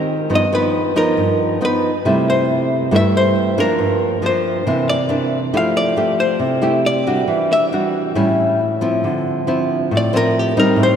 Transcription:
Already playing: D#3 C4 G4 A#4
0.30 G2 F3 B3 D#4
0.35 D#5
0.53 F3 B3 D#4 B4
0.96 F3 B3 D#4 A#4
1.17 G2
1.61 F3 B3 D#4 B4
2.05 C3 G3 A3 E4
2.30 C5
2.91 G2 G3 A3 E4
2.96 E5
3.17 C5
3.58 F3 A#3 D4 A#4
3.79 G2
4.22 F3 A#3 D4
4.26 C5
4.67 C3 E3 A#3 D4
4.89 D5
5.09 E3 A#3 D4
5.54 F3 A3 E4 G4 F5
5.77 D5
5.97 A3 E4 G4
6.20 C5
6.39 C3
6.62 A3 E4 G4
6.86 D5
7.07 G3 D4 F#4
7.28 E3
7.53 E5
7.72 G3 D4 F#4
8.15 A2 G3 C#4 E4
8.81 F3 C4 E4
9.04 D3
9.47 F3 C4 E4
9.91 A2
9.97 D5
10.13 F3 C4 E4 A#4
10.39 G4
10.57 G3 C4 D#4 A#4
10.76 A2
10.83 C5

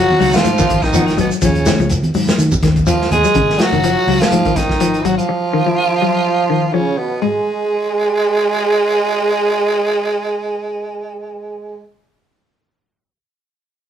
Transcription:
Already playing: F3 F#3 F#4
0.09 muted clean electric guitar stroke, high conga
0.19 C#2 F#3 B3 D#4 F#4, open hi-hat, claves, shekere
0.33 F3 F4, snare, closed hi-hat, high conga, shekere
0.42 G#2 F3, muted clean electric guitar stroke, closed hi-hat, shekere
0.57 D#3 F#3 B3 D#4, kick, closed hi-hat, high conga, shekere
0.68 G#1, muted clean electric guitar stroke, kick, closed hi-hat, claves
0.81 D#3 D#4, muted clean electric guitar stroke, kick, snare, shekere
0.92 F3 F#3 B3 D#4 F#4, closed hi-hat, high conga, shekere
1.06 muted clean electric guitar stroke, snare, closed hi-hat, claves
1.17 G#1 B2 F#3 B3, muted clean electric guitar stroke, closed hi-hat, high conga, low conga, shekere
1.31 muted clean electric guitar stroke, closed hi-hat, shekere
1.42 D#2 C#3 F3 C#4, kick, closed hi-hat, high conga, low conga, shekere
1.55 closed hi-hat
1.65 D#3, snare, closed hi-hat, high conga, shekere
1.79 C#2 F3, closed hi-hat, shekere
1.89 closed hi-hat, high conga, shekere
2.03 closed hi-hat, high conga
2.14 G#2 F#3, open hi-hat, shekere
2.27 snare, closed hi-hat, low conga, shekere
2.38 D#3, closed hi-hat, high conga, shekere
2.52 kick, high conga, shekere
2.62 D#2 D#3, kick, snare, closed hi-hat
2.76 kick, closed hi-hat, shekere
2.87 F3 F4, closed hi-hat, high conga, shekere
3.01 snare
3.11 D#2 G#3 G#4, closed hi-hat, high conga, low conga, shekere
3.24 F#3, closed hi-hat, shekere
3.34 G#1 C#3, kick, closed hi-hat
3.50 snare
3.59 F#3 F#4, snare, closed hi-hat
3.72 F#1 D#3, closed hi-hat
3.83 F3, closed hi-hat
4.07 C#2 F#3, open hi-hat
4.21 F3 F4, snare, closed hi-hat
4.31 G#2 F3, closed hi-hat
4.45 D#3, kick, closed hi-hat
4.56 G#1 D#3 D#4, kick, snare, closed hi-hat
4.70 kick, snare
4.80 F3, closed hi-hat
4.94 closed hi-hat
5.04 G#1 F#3 F#4, closed hi-hat
5.18 F3 F4, closed hi-hat
5.29 muted clean electric guitar stroke
5.53 D#3
5.66 F3
6.02 F#3
6.50 D#3
6.73 C#3 F3 C#4
6.98 B2 B3
7.21 G#2 G#3

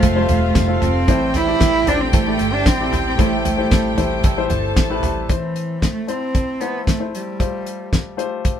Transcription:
Already playing: A3 C4 F4 A4 C5 F5 C6
0.03 F1 F3 A3 C4 F4 A4, kick, closed hi-hat
0.15 G3 C4 F4 C5
0.21 A3
0.29 E1 C4 F4 A4, closed hi-hat, floor tom
0.55 F1, kick, snare, closed hi-hat
0.67 A3 C4 F4 A4
0.81 F1 C4 F4 A4, closed hi-hat, floor tom
1.07 A1 A2 E3 G3 A3 C4 E4 G4 A4 C5 G5, kick, closed hi-hat
1.34 E4, closed hi-hat, floor tom
1.47 A3 E4 G4 D5
1.60 A1 G3 C4 E4 A4, kick, snare, closed hi-hat
1.86 A1 G3 A3 C4 D4 E4 G4 A4 C5, closed hi-hat, floor tom
2.00 C4
2.12 A1 A2 E3 G3 A3 C4 E4 A4, kick, closed hi-hat
2.27 A3 E4 G4 D5
2.39 G1 G3 C4 E4 A4, closed hi-hat
2.53 D4
2.66 A1 C4, kick, snare, closed hi-hat
2.79 A3 E4 G4 D5
2.93 A1, closed hi-hat, floor tom
3.06 C4
3.18 A1 A2 E3 G3 A3 C4 E4 G4 A4 C5, kick, closed hi-hat
3.45 A3, closed hi-hat, floor tom
3.57 A3 E4 G4 C5
3.71 A1 G3 C4 E4 A4, kick, snare, closed hi-hat
3.97 A1 A3 E4 G4 C5, closed hi-hat, floor tom
4.23 A1 A2 E3 G3 C4 E4 A4, kick, closed hi-hat
4.37 A3 E4 G4 C5
4.50 G1 G3 C4 E4 A4 A5, closed hi-hat, floor tom
4.76 A1, kick, snare, closed hi-hat
4.90 A3 E4 G4 B4
5.03 A1 G3 C4 E4 A4, closed hi-hat, floor tom
5.28 A2 E3 A3 C4 E4 C5, kick, closed hi-hat
5.56 closed hi-hat
5.82 A3, kick, snare, closed hi-hat
6.07 A3 C4 E4 C5, closed hi-hat
6.35 kick, closed hi-hat
6.60 A3 B3 C4 E4 C5, closed hi-hat
6.87 A3, kick, snare, closed hi-hat
6.99 A3 C4 E4 C5
7.15 G3, closed hi-hat
7.39 A3 F4 G4 C5, kick, closed hi-hat
7.66 closed hi-hat
7.93 kick, snare, closed hi-hat
8.17 A3 F4 G4 C5, closed hi-hat
8.45 kick, closed hi-hat

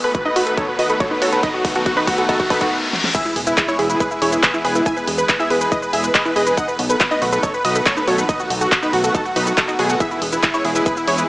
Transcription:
Already playing: riser
0.04 D#3 A3 B3 F#4 A4 B4, open hi-hat
0.15 F#4 B4, kick, closed hi-hat
0.25 D#3 A3 B3 D#4 F#4 B4 D#5
0.36 F#4 B4, open hi-hat
0.47 D#3 A3 B3 F#4 A4 B4, closed hi-hat
0.57 D#4 A4 C#5, kick, closed hi-hat
0.68 B4
0.79 D#3 A3 B3 F#4 B4 D#5, open hi-hat
0.90 A4 B4, closed hi-hat
1.00 D#3 A3 B3 F#4 A4 C#5, kick, closed hi-hat
1.11 D#4 B4
1.22 D#3 A3 B3 F#4 A4 C#5, open hi-hat
1.32 A4 B4, closed hi-hat
1.43 D#3 A3 B3 D#4 F#4 B4 D#5, kick, closed hi-hat
1.54 F#4
1.65 F#4, kick, open hi-hat
1.75 D#3 A3 B3 F#4 A4, closed hi-hat
1.86 F#4, kick, closed hi-hat
1.97 D#3 A3 B3 D#4 F#4 B4
2.07 F#4, kick, open hi-hat
2.18 D#3 A3 B3 F#4 A4, closed hi-hat
2.29 D#4 F#4 A4, kick, closed hi-hat, reverse cymbal
2.40 F#4, kick
2.50 D#3 A3 B3 D#4 F#4 A4 B4, kick, open hi-hat
2.61 F#4, kick, closed hi-hat
2.93 snare
3.04 snare
3.15 E3 G#3 B3 E4 G#4 E5, kick, closed hi-hat, crash, impact, shaker
3.25 E4, shaker
3.36 E1 G#4, open hi-hat
3.47 E3 G#3 B3 E4 G#4 B4, closed hi-hat, shaker
3.57 E4 G#4, kick, clap, closed hi-hat, shaker
3.68 E3 G#3 B3 E4 G#4 C#5, shaker
3.79 E1 E4 G#4, open hi-hat
3.90 E3 G#3 B3 E4 G#4 B4, closed hi-hat, shaker
4.00 E4 G#4 B4, kick, closed hi-hat, shaker
4.11 E4, shaker
4.22 E1 E3 G#3 B3 E4 G#4 C#5, open hi-hat
4.32 E4 B4, closed hi-hat, shaker
4.43 E3 G#3 B3 G#4 B4, kick, clap, closed hi-hat, shaker
4.54 E4, shaker
4.64 E1 E3 G#3 B3 G#4 B4, open hi-hat
4.75 E4 B4, closed hi-hat, shaker
4.86 E3 G#3 B3 E4 G#4 E5 G#5, kick, closed hi-hat, shaker
4.97 B4, shaker
5.07 E1 G#4, open hi-hat
5.18 E3 G#3 B3 G#4 B4, closed hi-hat, shaker
5.29 G#4 B4, kick, clap, closed hi-hat, shaker
5.39 E3 G#3 B3 E4 G#4 E5, shaker
5.50 E1 G#4 B4, open hi-hat
5.61 E3 G#3 B3 G#4 B4, closed hi-hat, shaker
5.72 E4 B4 D#5, kick, closed hi-hat, shaker
5.82 B4, shaker
5.93 E1 E3 G#3 B3 G#4 E5, open hi-hat
6.04 B4, closed hi-hat, shaker
6.14 E3 G#3 B3 G#4 B4 D#5, kick, clap, closed hi-hat, shaker
6.25 E4 B4, shaker
6.36 E1 E3 G#3 B3 G#4 B4 D#5, open hi-hat
6.47 B4, closed hi-hat, shaker
6.57 D#3 A3 B3 D#4 F#4 D#5 F#5, kick, closed hi-hat, shaker
6.68 B4, shaker
6.79 B1 F#4, open hi-hat
6.90 D#3 A3 B3 F#4 A4 B4, closed hi-hat, shaker
7.00 F#4 B4, kick, clap, closed hi-hat, shaker
7.11 D#3 A3 B3 D#4 F#4 B4 D#5, shaker
7.22 B1 F#4 B4, open hi-hat
7.32 D#3 A3 B3 F#4 A4 B4, closed hi-hat, shaker
7.43 D#4 A4 C#5, kick, closed hi-hat, shaker
7.54 B4, shaker
7.65 B1 D#3 A3 B3 F#4 B4 D#5, open hi-hat
7.75 A4 B4, closed hi-hat, shaker
7.86 D#3 A3 B3 F#4 A4 C#5, kick, clap, closed hi-hat, shaker
7.97 D#4 B4, shaker
8.07 B1 D#3 A3 B3 F#4 A4 C#5, open hi-hat
8.18 A4 B4, closed hi-hat, shaker
8.29 D#3 A3 B3 D#4 F#4 B4 D#5, kick, closed hi-hat, shaker
8.40 F#4, shaker
8.50 B1 F#4, open hi-hat
8.61 D#3 A3 B3 F#4 A4, closed hi-hat, shaker
8.72 F#4, kick, clap, closed hi-hat, shaker
8.82 D#3 A3 B3 D#4 F#4 B4, shaker
8.93 B1 F#4, open hi-hat
9.04 D#3 A3 B3 F#4 A4, closed hi-hat, shaker
9.15 D#4 F#4 A4, kick, closed hi-hat, shaker
9.25 F#4, shaker
9.36 B1 D#3 A3 B3 D#4 F#4 B4, open hi-hat
9.47 F#4 A4, closed hi-hat, shaker
9.57 D#3 A3 B3 F#4 A4, kick, clap, closed hi-hat, shaker
9.68 D#4 F#4, clap, shaker
9.79 B1 D#3 A3 B3 F#4 G#4, open hi-hat
9.90 F#4 A4, closed hi-hat, shaker
10.00 E3 G#3 B3 E4 G#4 E5, kick, closed hi-hat, shaker
10.11 E4, shaker
10.22 E1 G#4, open hi-hat
10.32 E3 G#3 B3 E4 G#4 B4, closed hi-hat, shaker
10.43 E4 G#4, kick, clap, closed hi-hat, shaker
10.54 E3 G#3 B3 E4 G#4 C#5, shaker
10.64 E1 E4 G#4, open hi-hat
10.75 E3 G#3 B3 E4 G#4 B4, closed hi-hat, shaker
10.86 E4 G#4 B4, kick, closed hi-hat, shaker
10.97 E4, shaker
11.07 E1 E3 G#3 B3 E4 G#4 C#5, open hi-hat
11.18 E4 B4, closed hi-hat, shaker

